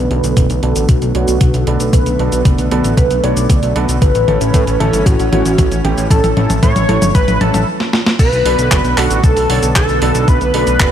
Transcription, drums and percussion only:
0.11 closed hi-hat soft
0.24 closed hi-hat soft
0.24 cabasa medium
0.37 kick loud
0.37 closed hi-hat medium
0.37 mid tom soft
0.37 cabasa soft
0.50 closed hi-hat soft
0.50 cabasa soft
0.63 closed hi-hat medium
0.76 closed hi-hat soft
0.76 cabasa medium
0.89 kick loud
0.89 closed hi-hat medium
0.89 mid tom soft
0.89 cabasa soft
1.02 closed hi-hat soft
1.02 cabasa soft
1.15 closed hi-hat medium
1.28 closed hi-hat soft
1.28 cabasa medium
1.41 kick loud
1.41 closed hi-hat loud
1.41 mid tom medium
1.41 cabasa soft
1.54 closed hi-hat soft
1.54 cabasa soft
1.67 closed hi-hat medium
1.80 closed hi-hat soft
1.80 cabasa medium
1.93 kick loud
1.93 closed hi-hat medium
1.93 mid tom medium
1.93 cabasa soft
2.06 closed hi-hat soft
2.06 cabasa soft
2.19 closed hi-hat soft
2.32 closed hi-hat soft
2.32 cabasa medium
2.45 kick loud
2.45 closed hi-hat medium
2.45 mid tom medium
2.45 cabasa soft
2.58 closed hi-hat soft
2.58 cabasa soft
2.71 closed hi-hat medium
2.84 closed hi-hat soft
2.84 cabasa medium
2.97 kick loud
2.97 closed hi-hat medium
2.97 mid tom medium
2.97 cabasa soft
3.11 closed hi-hat soft
3.11 cabasa soft
3.24 closed hi-hat medium
3.37 closed hi-hat soft
3.37 cabasa medium
3.50 kick loud
3.50 closed hi-hat medium
3.50 mid tom medium
3.50 cabasa soft
3.63 closed hi-hat soft
3.63 cabasa soft
3.76 closed hi-hat medium
3.89 closed hi-hat soft
3.89 cabasa medium
4.02 kick loud
4.02 closed hi-hat medium
4.02 mid tom medium
4.02 cabasa soft
4.15 closed hi-hat soft
4.15 cabasa soft
4.28 closed hi-hat soft
4.28 mid tom medium
4.41 closed hi-hat soft
4.41 cabasa medium
4.54 kick loud
4.54 closed hi-hat medium
4.54 mid tom medium
4.54 cabasa soft
4.67 closed hi-hat soft
4.67 cabasa soft
4.80 closed hi-hat medium
4.80 mid tom medium
4.93 closed hi-hat soft
4.93 cabasa medium
5.06 kick loud
5.06 closed hi-hat medium
5.06 mid tom medium
5.06 cabasa soft
5.20 closed hi-hat soft
5.20 cabasa soft
5.33 closed hi-hat medium
5.33 mid tom medium
5.46 closed hi-hat soft
5.46 cabasa medium
5.58 kick loud
5.58 closed hi-hat medium
5.58 mid tom medium
5.58 cabasa soft
5.72 closed hi-hat soft
5.72 cabasa soft
5.85 closed hi-hat medium
5.85 mid tom medium
5.98 closed hi-hat soft
5.98 cabasa medium
6.11 kick loud
6.11 closed hi-hat medium
6.11 mid tom medium
6.11 cabasa medium
6.24 closed hi-hat soft
6.24 mid tom medium
6.24 cabasa soft
6.37 closed hi-hat soft
6.37 mid tom medium
6.50 closed hi-hat soft
6.50 mid tom medium
6.50 cabasa medium
6.63 kick loud
6.63 closed hi-hat medium
6.63 mid tom medium
6.63 cabasa soft
6.76 closed hi-hat soft
6.76 mid tom medium
6.76 cabasa soft
6.89 closed hi-hat medium
6.89 mid tom loud
7.02 closed hi-hat soft
7.02 mid tom medium
7.02 cabasa medium
7.15 kick loud
7.15 closed hi-hat medium
7.15 mid tom loud
7.15 cabasa medium
7.28 closed hi-hat soft
7.28 mid tom medium
7.28 cabasa soft
7.41 closed hi-hat medium
7.41 mid tom loud
7.54 closed hi-hat soft
7.54 mid tom medium
7.54 cabasa medium
7.80 snare medium
7.93 snare medium
8.06 snare medium
8.19 kick loud
8.19 closed hi-hat medium
8.19 crash loud
8.19 cabasa soft
8.33 closed hi-hat soft
8.33 cabasa soft
8.46 open hi-hat loud
8.59 closed hi-hat medium
8.59 cabasa medium
8.71 kick loud
8.71 clap loud
8.71 closed hi-hat medium
8.71 cabasa soft
8.85 closed hi-hat soft
8.85 cabasa soft
8.98 clap medium
8.98 open hi-hat loud
9.11 closed hi-hat medium
9.11 cabasa medium
9.24 kick loud
9.24 closed hi-hat medium
9.24 cabasa soft
9.37 open hi-hat medium
9.37 cabasa soft
9.50 open hi-hat loud
9.63 closed hi-hat medium
9.63 cabasa medium
9.76 kick loud
9.76 clap loud
9.76 closed hi-hat medium
9.76 cabasa soft
9.89 closed hi-hat soft
9.89 cabasa soft
10.02 open hi-hat loud
10.15 closed hi-hat medium
10.15 cabasa medium
10.28 kick loud
10.28 closed hi-hat medium
10.28 cabasa soft
10.41 closed hi-hat soft
10.41 cabasa soft
10.54 open hi-hat loud
10.67 closed hi-hat medium
10.67 cabasa medium
10.80 kick loud
10.80 clap loud
10.80 closed hi-hat medium
10.80 cabasa soft

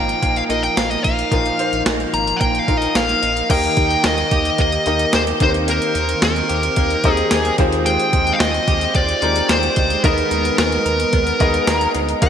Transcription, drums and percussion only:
0.09 closed hi-hat medium
0.22 kick medium
0.22 closed hi-hat medium
0.22 cowbell medium
0.36 closed hi-hat soft
0.50 closed hi-hat medium
0.63 closed hi-hat medium
0.77 snare loud
0.77 closed hi-hat loud
0.77 tambourine medium
0.77 cowbell medium
0.91 closed hi-hat medium
1.04 kick medium
1.04 closed hi-hat medium
1.19 closed hi-hat medium
1.32 kick loud
1.32 closed hi-hat loud
1.32 cowbell medium
1.46 closed hi-hat medium
1.59 closed hi-hat medium
1.73 closed hi-hat medium
1.86 snare loud
1.86 closed hi-hat medium
1.86 tambourine medium
1.86 cowbell medium
2.00 closed hi-hat soft
2.14 closed hi-hat medium
2.27 closed hi-hat medium
2.41 kick medium
2.41 closed hi-hat medium
2.41 cowbell medium
2.55 closed hi-hat soft
2.68 kick medium
2.68 closed hi-hat medium
2.82 closed hi-hat medium
2.95 snare loud
2.95 closed hi-hat loud
2.95 tambourine medium
2.95 cowbell medium
3.09 closed hi-hat medium
3.23 closed hi-hat medium
3.37 closed hi-hat medium
3.50 kick loud
3.50 closed hi-hat loud
3.50 crash loud
3.50 cowbell medium
3.64 closed hi-hat medium
3.77 kick loud
3.77 closed hi-hat medium
3.91 closed hi-hat medium
4.04 snare loud
4.04 closed hi-hat medium
4.04 tambourine medium
4.04 cowbell medium
4.18 closed hi-hat soft
4.31 kick loud
4.31 closed hi-hat medium
4.45 closed hi-hat medium
4.58 kick medium
4.58 closed hi-hat medium
4.58 cowbell medium
4.72 closed hi-hat medium
4.86 closed hi-hat medium
4.99 closed hi-hat medium
5.13 snare loud
5.13 closed hi-hat loud
5.13 tambourine medium
5.13 cowbell medium
5.27 closed hi-hat medium
5.40 kick loud
5.40 closed hi-hat medium
5.54 closed hi-hat medium
5.68 closed hi-hat loud
5.68 cowbell medium
5.82 closed hi-hat medium
5.95 closed hi-hat medium
6.09 closed hi-hat medium
6.22 snare loud
6.22 closed hi-hat medium
6.22 tambourine medium
6.22 cowbell medium
6.36 closed hi-hat soft
6.50 closed hi-hat medium
6.63 closed hi-hat medium
6.76 kick medium
6.76 closed hi-hat medium
6.76 cowbell medium
6.90 closed hi-hat medium
7.04 kick loud
7.04 closed hi-hat medium
7.17 closed hi-hat medium
7.31 snare loud
7.31 closed hi-hat loud
7.31 tambourine medium
7.31 cowbell medium
7.45 closed hi-hat medium
7.58 kick loud
7.58 closed hi-hat medium
7.72 closed hi-hat medium
7.86 closed hi-hat loud
7.86 cowbell medium
8.00 closed hi-hat medium
8.13 kick loud
8.13 closed hi-hat medium
8.27 closed hi-hat medium
8.40 snare loud
8.40 closed hi-hat medium
8.40 tambourine medium
8.40 cowbell medium
8.54 closed hi-hat soft
8.68 kick loud
8.68 closed hi-hat medium
8.81 closed hi-hat medium
8.95 kick medium
8.95 closed hi-hat medium
8.95 cowbell medium
9.09 closed hi-hat medium
9.22 closed hi-hat medium
9.36 closed hi-hat medium
9.49 snare loud
9.49 closed hi-hat loud
9.49 tambourine medium
9.49 cowbell medium
9.63 closed hi-hat medium
9.76 kick medium
9.76 closed hi-hat medium
9.90 closed hi-hat medium
10.04 kick loud
10.04 closed hi-hat loud
10.04 cowbell medium
10.18 closed hi-hat medium
10.31 closed hi-hat medium
10.45 closed hi-hat medium
10.58 snare loud
10.58 closed hi-hat medium
10.58 tambourine medium
10.58 cowbell medium
10.72 closed hi-hat soft
10.86 closed hi-hat medium
11.00 closed hi-hat medium
11.13 kick medium
11.13 closed hi-hat medium
11.13 cowbell medium
11.27 closed hi-hat medium
11.40 kick loud
11.40 closed hi-hat medium
11.54 closed hi-hat medium
11.67 snare loud
11.67 closed hi-hat loud
11.67 tambourine medium
11.67 cowbell medium
11.81 closed hi-hat medium
11.95 closed hi-hat medium
11.95 cowbell medium
12.09 closed hi-hat medium
12.22 kick loud
12.22 closed hi-hat loud
12.22 cowbell medium

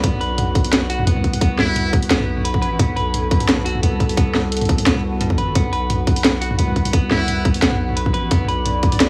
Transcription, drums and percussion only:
0.04 kick loud
0.04 closed hi-hat medium
0.13 mid tom medium
0.21 open hi-hat soft
0.38 closed hi-hat medium
0.38 mid tom medium
0.55 kick loud
0.55 closed hi-hat soft
0.55 mid tom medium
0.64 open hi-hat medium
0.73 snare loud
0.73 closed hi-hat medium
0.73 mid tom medium
0.90 open hi-hat medium
0.99 mid tom medium
1.07 closed hi-hat medium
1.16 mid tom medium
1.24 kick medium
1.24 closed hi-hat soft
1.33 mid tom medium
1.33 open hi-hat medium
1.41 kick loud
1.41 closed hi-hat medium
1.59 snare medium
1.59 mid tom medium
1.76 closed hi-hat medium
1.76 mid tom medium
1.93 kick loud
1.93 closed hi-hat soft
1.93 mid tom medium
2.03 open hi-hat medium
2.10 snare loud
2.10 closed hi-hat medium
2.20 mid tom medium
2.37 mid tom medium
2.45 closed hi-hat medium
2.54 kick medium
2.54 mid tom medium
2.62 closed hi-hat soft
2.79 kick loud
2.79 closed hi-hat medium
2.79 mid tom medium
2.97 mid tom soft
2.97 open hi-hat soft
3.14 closed hi-hat medium
3.14 mid tom medium
3.31 kick loud
3.31 closed hi-hat soft
3.40 mid tom medium
3.40 open hi-hat medium
3.49 snare loud
3.49 closed hi-hat medium
3.58 mid tom medium
3.66 open hi-hat medium
3.75 mid tom soft
3.83 closed hi-hat medium
4.00 kick medium
4.00 closed hi-hat soft
4.00 mid tom medium
4.09 open hi-hat medium
4.17 kick loud
4.17 closed hi-hat medium
4.17 mid tom soft
4.35 snare medium
4.35 mid tom soft
4.52 closed hi-hat medium
4.57 closed hi-hat medium
4.61 closed hi-hat soft
4.61 mid tom medium
4.65 kick loud
4.65 closed hi-hat soft
4.69 closed hi-hat soft
4.78 mid tom medium
4.78 open hi-hat medium
4.86 snare loud
4.86 closed hi-hat medium
4.96 mid tom medium
5.21 closed hi-hat medium
5.21 mid tom medium
5.30 kick medium
5.38 closed hi-hat soft
5.38 mid tom medium
5.55 kick loud
5.55 closed hi-hat medium
5.65 mid tom medium
5.73 open hi-hat soft
5.90 closed hi-hat medium
5.90 mid tom medium
6.07 kick loud
6.07 closed hi-hat soft
6.07 mid tom medium
6.16 open hi-hat medium
6.24 snare loud
6.24 closed hi-hat medium
6.24 mid tom medium
6.42 open hi-hat medium
6.51 mid tom medium
6.59 closed hi-hat medium
6.68 mid tom medium
6.76 kick medium
6.76 closed hi-hat soft
6.85 mid tom medium
6.85 open hi-hat medium
6.93 kick loud
6.93 closed hi-hat medium
7.11 snare medium
7.11 mid tom medium
7.28 closed hi-hat medium
7.28 mid tom medium
7.45 kick loud
7.45 closed hi-hat soft
7.45 mid tom medium
7.54 open hi-hat medium
7.62 snare loud
7.62 closed hi-hat medium
7.72 mid tom medium
7.89 mid tom medium
7.97 closed hi-hat medium
8.06 kick medium
8.06 mid tom medium
8.14 closed hi-hat soft
8.31 kick loud
8.31 closed hi-hat medium
8.31 mid tom medium
8.44 mid tom medium
8.49 open hi-hat soft
8.66 closed hi-hat medium
8.66 mid tom medium
8.83 kick loud
8.83 closed hi-hat soft
8.92 mid tom medium
8.92 open hi-hat medium
9.00 snare loud
9.00 closed hi-hat medium

